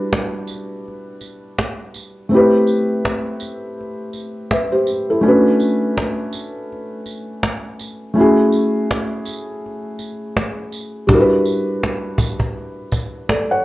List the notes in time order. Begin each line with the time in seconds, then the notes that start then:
Already playing: G3 D4 E4 F#4 B4
0.13 cajon slap
0.48 cajon slap, tambourine
0.88 cajon slap
1.21 cajon slap, tambourine
1.59 cajon slap
1.94 cajon slap, tambourine
2.29 A3 C4 E4, cajon slap
2.35 G4 B4
2.67 cajon slap, tambourine
3.05 cajon slap
3.40 cajon slap, tambourine
3.81 cajon slap
4.13 cajon slap, tambourine
4.51 B4 E5, cajon slap
4.72 G4 C5
4.87 cajon slap, tambourine
5.10 E4 A4
5.21 A3 C#4 D4, cajon slap
5.26 F#4 B4
5.60 cajon slap, tambourine
5.97 cajon slap
6.33 cajon slap, tambourine
6.72 cajon slap
7.06 cajon slap, tambourine
7.43 cajon slap
7.79 cajon slap, tambourine
8.14 A3 C#4 E4, cajon slap
8.19 F#4 G#4
8.52 cajon slap, tambourine
8.91 cajon slap
9.25 cajon slap, tambourine
9.66 cajon slap
9.99 cajon slap, tambourine
10.36 cajon slap
10.72 tambourine
11.07 G3 D4 E4, cajon bass
11.12 F#4 A#4
11.21 B4
11.46 cajon slap, tambourine
11.83 cajon slap
12.18 cajon bass, tambourine
12.39 cajon bass
12.58 cajon slap
12.92 cajon bass, tambourine
13.29 A4 D5, cajon slap
13.51 C#5 F#5